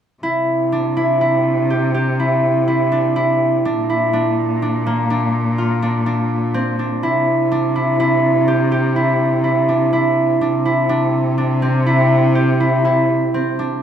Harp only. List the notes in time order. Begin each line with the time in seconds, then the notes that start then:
0.23 E4
0.72 D4
0.97 E4
1.21 E4
1.70 G4
1.94 G4
2.20 E4
2.68 E4
2.92 D4
3.16 E4
3.65 D4
3.90 E4
4.13 D4
4.62 D4
4.86 A#3
5.10 D4
5.58 F4
5.82 D4
6.06 D4
6.54 C4
6.79 D4
7.03 E4
7.52 D4
7.76 E4
8.00 E4
8.48 G4
8.72 G4
8.96 E4
9.44 E4
9.69 D4
9.93 E4
10.41 D4
10.65 E4
10.89 D4
11.38 D4
11.62 C4
11.86 E4
12.35 G4
12.60 E4
12.85 E4
13.34 C4
13.59 D4